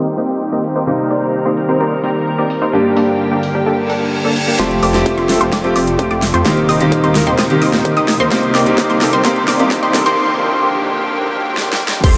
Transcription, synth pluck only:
4.59 4.73 C6 medium
4.83 4.96 D6 loud
5.18 5.31 C6 loud
5.41 5.50 C6 loud
5.52 5.66 D6 loud
5.76 6.08 D6 medium
6.11 6.24 D6 loud
6.34 6.44 C6 loud
6.45 6.59 C6 loud
6.69 6.82 D#6 loud
7.04 7.17 C6 loud
7.27 7.36 C6 loud
7.39 7.52 D#6 loud
7.62 7.94 D#6 medium
7.97 8.10 D#6 loud
8.20 8.30 C6 loud
8.32 8.45 C6 medium
8.55 8.68 D6 medium
8.90 9.03 C6 medium
9.13 9.22 C6 medium
9.25 9.38 C6 medium
9.48 9.61 D6 loud
9.83 9.96 C6 loud
10.06 10.15 C6 medium
12.04 12.17 C6 loud

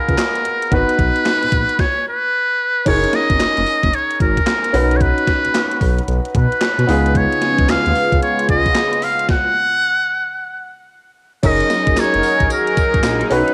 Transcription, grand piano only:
0.00 0.41 B3 medium
0.00 0.41 D#4 medium
0.00 0.42 F4 medium
0.00 0.45 G#4 medium
0.71 1.77 B3 medium
0.71 1.77 D#4 medium
0.71 1.78 F#4 medium
0.71 1.78 B4 medium
2.85 4.70 C#4 medium
2.85 4.70 D#4 medium
2.85 4.70 G#4 medium
2.85 4.71 A#4 medium
4.73 6.84 C#4 medium
4.73 6.84 D#4 medium
4.73 6.84 F#4 medium
4.73 6.85 B4 medium
6.87 8.98 B3 medium
6.87 8.98 D#4 medium
6.87 8.99 F4 medium
6.87 8.99 G#4 medium
11.43 13.27 C#4 medium
11.43 13.27 D#4 medium
11.43 13.28 G#4 medium
11.43 13.28 A#4 medium
13.30 13.54 C#4 medium
13.30 13.54 D#4 medium
13.30 13.54 F#4 medium
13.30 13.54 B4 medium

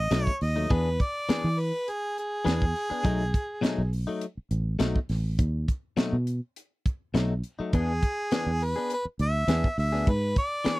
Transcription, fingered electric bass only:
0.11 0.25 B1 medium
0.42 0.68 D#2 medium
0.70 0.97 E2 medium
1.29 muted fingered electric bass stroke soft
1.44 1.71 E3 medium
2.46 2.72 E2 medium
2.91 muted fingered electric bass stroke soft
3.05 3.31 B1 medium
3.78 4.05 B1 medium
4.37 muted fingered electric bass stroke soft
4.51 4.77 A1 medium
4.80 4.94 B1 medium
5.09 5.36 A1 medium
5.39 5.65 D#2 medium
5.97 muted fingered electric bass stroke soft
6.13 6.39 B2 medium
7.14 7.41 B1 medium
7.59 muted fingered electric bass stroke soft
7.74 8.00 E2 medium
8.46 8.73 E2 medium
9.05 muted fingered electric bass stroke soft
9.19 9.46 D2 medium
9.48 9.62 E2 medium
9.78 10.04 D2 medium
10.07 10.34 G#2 medium
10.66 muted fingered electric bass stroke soft

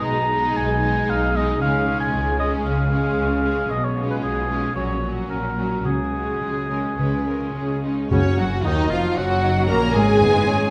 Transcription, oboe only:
0.05 0.58 A#5 medium
0.56 1.11 G#5 medium
1.10 1.38 F5 medium
1.36 1.61 D#5 medium
1.62 2.00 F5 medium
2.00 2.39 G#5 medium
2.39 2.51 D#5 medium
2.66 3.72 F5 medium
3.71 3.86 D#5 medium
3.84 4.10 C#5 medium
4.11 4.16 B4 medium
4.23 4.74 G#4 medium
4.76 5.10 C#5 medium
5.30 5.82 A#4 medium
5.85 7.80 G#4 medium
8.11 8.37 C#4 medium
8.38 8.64 F#4 medium
8.65 8.92 D#4 medium
8.91 9.17 F4 medium
9.17 9.68 F#4 medium
9.69 9.95 A#4 medium
9.95 10.70 G#4 medium

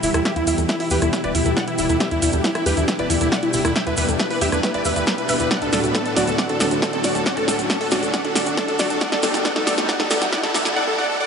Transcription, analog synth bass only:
0.03 0.11 E1 medium
0.14 0.22 E2 medium
0.36 0.44 E2 medium
0.47 0.55 E2 medium
0.58 0.66 E2 medium
0.91 0.99 E2 medium
1.02 1.10 E2 medium
1.24 1.32 E1 medium
1.35 1.42 E2 medium
1.46 1.53 E2 medium
1.79 1.86 E1 medium
1.90 1.97 E2 medium
2.11 2.19 E2 medium
2.22 2.30 E2 medium
2.33 2.41 E2 medium
2.66 2.74 E2 medium
2.77 2.85 E2 medium
2.99 3.07 E1 medium
3.10 3.18 E2 medium
3.21 3.29 E2 medium
3.54 3.61 E1 loud
3.65 3.72 E2 medium
3.87 3.94 E2 medium
3.98 4.05 E2 medium
4.08 4.16 E2 medium
4.41 4.49 E2 medium
4.52 4.60 E2 medium
4.74 4.82 E1 medium
4.85 4.93 E2 medium
4.96 5.04 E2 medium
5.29 5.37 E1 medium
5.40 5.48 E2 medium
5.62 5.69 D2 medium
5.73 5.80 D2 medium
5.84 5.91 D2 medium
6.16 6.24 D2 medium
6.27 6.35 D2 medium
6.49 6.57 D1 medium
6.60 6.68 D2 medium
6.71 6.79 D2 medium
7.04 7.12 D1 medium
7.15 7.23 D2 medium
7.37 7.45 D2 medium
7.48 7.56 D2 medium
7.59 7.67 D2 medium
7.92 7.99 D2 medium
8.02 8.10 D2 medium
8.24 8.32 D1 medium
8.35 8.43 D2 medium
8.46 8.54 D2 medium
8.79 8.87 D1 medium
8.90 8.98 D2 medium
9.12 9.20 G1 medium
9.23 9.31 G1 medium
9.34 9.42 G1 medium
9.67 9.75 G1 medium
9.78 9.86 G1 medium
10.00 10.07 G2 medium
10.11 10.18 G1 loud
10.22 10.29 G1 medium
10.54 10.62 G2 loud
10.65 10.73 G1 medium

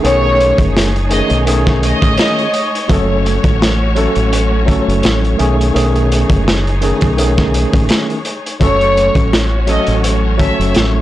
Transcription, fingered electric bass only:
0.04 0.52 B1 loud
0.59 1.20 F#1 medium
1.31 1.92 B1 loud
2.02 2.16 A1 medium
2.90 3.37 F#1 loud
3.44 4.06 A1 loud
4.17 4.78 A1 medium
4.88 5.02 F#1 medium
5.04 5.35 A1 loud
5.40 5.71 B1 loud
5.76 6.23 B1 loud
6.30 6.92 F#1 medium
7.02 7.64 B1 loud
7.74 7.87 A1 medium
8.61 9.09 F#1 loud
9.15 9.77 A1 loud
9.88 10.49 A1 loud
10.59 10.73 F#1 medium
10.76 11.02 A1 loud

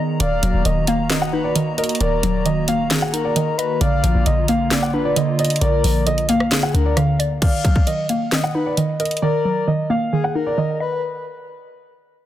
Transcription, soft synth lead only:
0.20 0.63 F5 loud
1.10 1.32 D#5 medium
1.33 1.54 B4 medium
2.01 2.43 A#4 loud
2.91 3.13 G#4 medium
3.14 3.56 A#4 loud
3.58 3.80 B4 medium
3.81 4.23 F5 loud
4.72 4.93 D5 medium
4.94 5.15 B4 medium
5.61 6.04 A#4 loud
6.52 6.73 G#4 medium
6.74 6.96 A#4 medium
7.42 7.84 F5 loud
8.33 8.54 D#5 medium
8.55 8.76 B4 medium
9.22 9.65 A#4 loud
10.12 10.34 G#4 medium
10.35 10.78 A#4 medium
10.81 11.02 B4 medium

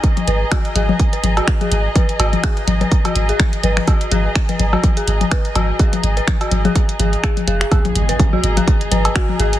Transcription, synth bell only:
0.28 0.31 B4 medium
0.52 0.55 F#4 loud
0.76 0.79 G#4 medium
1.13 1.16 B4 medium
1.37 1.40 F#4 loud
1.61 1.64 G#4 medium
1.96 1.99 B4 medium
2.20 2.23 F#4 medium
2.44 2.47 G#4 medium
2.81 2.84 B4 medium
3.05 3.08 F#4 loud
3.29 3.32 G#4 medium
3.64 3.67 B4 medium
3.88 3.91 F#4 loud
4.12 4.15 G#4 medium
4.49 4.52 B4 medium
4.73 4.76 F#4 loud
4.97 5.00 G#4 medium
5.32 5.35 B4 medium
5.56 5.59 F#4 loud
5.80 5.83 G#4 medium
6.17 6.20 B4 medium
6.41 6.44 F#4 loud
6.65 6.68 G#4 medium
7.00 7.09 G#4 medium
7.47 7.51 G#4 loud
7.61 7.68 G#4 medium
7.71 7.75 G#4 medium
8.09 8.12 B4 medium
8.33 8.36 F#4 loud
8.57 8.60 G#4 medium
8.92 8.95 B4 medium
9.16 9.19 F#4 loud
9.40 9.43 G#4 medium

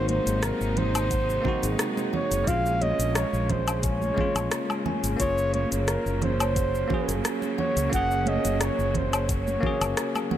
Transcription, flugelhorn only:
0.10 0.45 C5 loud
0.44 0.80 A#4 loud
0.78 1.80 C5 loud
2.14 2.49 C#5 loud
2.48 2.84 F5 loud
2.82 3.18 D#5 loud
3.16 3.52 C#5 loud
3.51 3.84 C5 medium
3.85 4.83 C#5 loud
5.20 5.52 C#5 loud
5.55 5.70 C#5 loud
5.89 6.20 A#4 medium
6.24 7.21 C5 loud
7.59 7.91 C#5 loud
7.94 8.30 F#5 loud
8.29 8.64 D#5 loud
8.63 8.98 C#5 loud
8.97 9.30 C5 medium
9.31 10.29 C#5 medium

